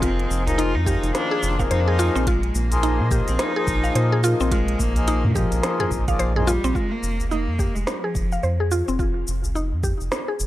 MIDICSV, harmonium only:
0, 0, Header, 1, 2, 480
1, 0, Start_track
1, 0, Tempo, 560748
1, 22, Time_signature, 4, 2, 24, 8
1, 8961, End_track
2, 0, Start_track
2, 0, Title_t, "Harmonium"
2, 0, Program_c, 0, 20
2, 0, Note_on_c, 0, 53, 71
2, 0, Note_on_c, 0, 58, 64
2, 0, Note_on_c, 0, 63, 68
2, 0, Note_on_c, 0, 68, 68
2, 0, Note_on_c, 0, 72, 82
2, 363, Note_off_c, 0, 53, 0
2, 367, Note_off_c, 0, 58, 0
2, 373, Note_off_c, 0, 63, 0
2, 376, Note_off_c, 0, 68, 0
2, 380, Note_off_c, 0, 72, 0
2, 389, Note_on_c, 0, 53, 94
2, 396, Note_on_c, 0, 58, 85
2, 401, Note_on_c, 0, 63, 88
2, 406, Note_on_c, 0, 68, 88
2, 408, Note_on_c, 0, 72, 106
2, 620, Note_off_c, 0, 53, 0
2, 623, Note_off_c, 0, 58, 0
2, 626, Note_off_c, 0, 63, 0
2, 629, Note_off_c, 0, 68, 0
2, 630, Note_off_c, 0, 72, 0
2, 722, Note_on_c, 0, 53, 79
2, 728, Note_on_c, 0, 58, 70
2, 739, Note_on_c, 0, 51, 71
2, 747, Note_on_c, 0, 68, 69
2, 755, Note_on_c, 0, 72, 83
2, 1320, Note_off_c, 0, 53, 0
2, 1324, Note_off_c, 0, 58, 0
2, 1329, Note_off_c, 0, 51, 0
2, 1333, Note_off_c, 0, 68, 0
2, 1337, Note_off_c, 0, 72, 0
2, 1347, Note_on_c, 0, 53, 101
2, 1357, Note_on_c, 0, 58, 92
2, 1366, Note_on_c, 0, 63, 93
2, 1374, Note_on_c, 0, 68, 89
2, 1381, Note_on_c, 0, 72, 114
2, 1922, Note_off_c, 0, 53, 0
2, 1926, Note_off_c, 0, 58, 0
2, 1931, Note_off_c, 0, 63, 0
2, 1935, Note_off_c, 0, 68, 0
2, 1938, Note_off_c, 0, 72, 0
2, 2319, Note_on_c, 0, 53, 99
2, 2324, Note_on_c, 0, 58, 92
2, 2329, Note_on_c, 0, 63, 94
2, 2335, Note_on_c, 0, 68, 96
2, 2337, Note_on_c, 0, 72, 110
2, 2636, Note_off_c, 0, 53, 0
2, 2638, Note_off_c, 0, 58, 0
2, 2641, Note_off_c, 0, 63, 0
2, 2644, Note_off_c, 0, 68, 0
2, 2645, Note_off_c, 0, 72, 0
2, 2661, Note_on_c, 0, 53, 79
2, 2664, Note_on_c, 0, 58, 70
2, 2669, Note_on_c, 0, 63, 71
2, 2674, Note_on_c, 0, 68, 70
2, 2678, Note_on_c, 0, 72, 87
2, 3010, Note_off_c, 0, 53, 0
2, 3011, Note_off_c, 0, 58, 0
2, 3014, Note_off_c, 0, 63, 0
2, 3017, Note_off_c, 0, 68, 0
2, 3019, Note_off_c, 0, 72, 0
2, 3034, Note_on_c, 0, 53, 97
2, 3042, Note_on_c, 0, 58, 90
2, 3051, Note_on_c, 0, 63, 90
2, 3058, Note_on_c, 0, 68, 91
2, 3066, Note_on_c, 0, 72, 108
2, 3593, Note_off_c, 0, 53, 0
2, 3597, Note_off_c, 0, 58, 0
2, 3602, Note_off_c, 0, 63, 0
2, 3605, Note_off_c, 0, 68, 0
2, 3609, Note_off_c, 0, 72, 0
2, 3617, Note_on_c, 0, 53, 74
2, 3625, Note_on_c, 0, 58, 65
2, 3631, Note_on_c, 0, 63, 67
2, 3641, Note_on_c, 0, 68, 70
2, 3649, Note_on_c, 0, 72, 88
2, 4208, Note_off_c, 0, 53, 0
2, 4212, Note_off_c, 0, 58, 0
2, 4215, Note_off_c, 0, 63, 0
2, 4220, Note_off_c, 0, 68, 0
2, 4224, Note_off_c, 0, 72, 0
2, 4240, Note_on_c, 0, 53, 98
2, 4244, Note_on_c, 0, 58, 86
2, 4247, Note_on_c, 0, 63, 84
2, 4254, Note_on_c, 0, 68, 89
2, 4257, Note_on_c, 0, 72, 107
2, 4465, Note_off_c, 0, 53, 0
2, 4468, Note_off_c, 0, 58, 0
2, 4469, Note_off_c, 0, 63, 0
2, 4472, Note_off_c, 0, 68, 0
2, 4474, Note_off_c, 0, 72, 0
2, 4571, Note_on_c, 0, 53, 75
2, 4578, Note_on_c, 0, 58, 68
2, 4585, Note_on_c, 0, 63, 67
2, 4595, Note_on_c, 0, 68, 69
2, 4604, Note_on_c, 0, 72, 85
2, 5165, Note_off_c, 0, 53, 0
2, 5169, Note_off_c, 0, 58, 0
2, 5172, Note_off_c, 0, 63, 0
2, 5177, Note_off_c, 0, 68, 0
2, 5182, Note_off_c, 0, 72, 0
2, 5201, Note_on_c, 0, 53, 93
2, 5205, Note_on_c, 0, 58, 92
2, 5209, Note_on_c, 0, 63, 84
2, 5214, Note_on_c, 0, 68, 88
2, 5217, Note_on_c, 0, 74, 114
2, 5409, Note_off_c, 0, 53, 0
2, 5411, Note_off_c, 0, 58, 0
2, 5413, Note_off_c, 0, 63, 0
2, 5415, Note_off_c, 0, 68, 0
2, 5417, Note_off_c, 0, 74, 0
2, 5441, Note_on_c, 0, 53, 91
2, 5442, Note_on_c, 0, 58, 85
2, 5449, Note_on_c, 0, 63, 87
2, 5454, Note_on_c, 0, 68, 83
2, 5456, Note_on_c, 0, 72, 98
2, 5565, Note_off_c, 0, 53, 0
2, 5566, Note_off_c, 0, 58, 0
2, 5569, Note_off_c, 0, 63, 0
2, 5572, Note_off_c, 0, 68, 0
2, 5573, Note_off_c, 0, 72, 0
2, 8961, End_track
0, 0, End_of_file